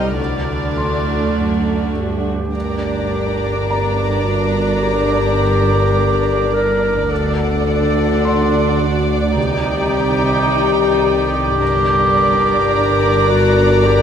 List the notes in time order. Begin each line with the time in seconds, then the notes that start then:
Already playing: C2 G3 C4 D#4 G4 C5 D#5 A5 A#5 B5 F6
0.18 D2 D3 A3 D4 F#4 D5
0.77 C6
1.37 F#2
1.95 G2 G4
2.53 G1 G2 D3 D4 A#4 D5 A#5
3.70 A#5
4.25 F#4
4.82 G4
6.54 A#4
7.10 D2 D3 D4 F#4 A4 D5 F#5
8.25 C6
8.80 F#4
9.36 C2 C3 D#3 D#4 G4 G5
11.04 G4
11.61 G1 G2 D3 D4 A#4 D5 A#5
13.29 F#4
13.85 G4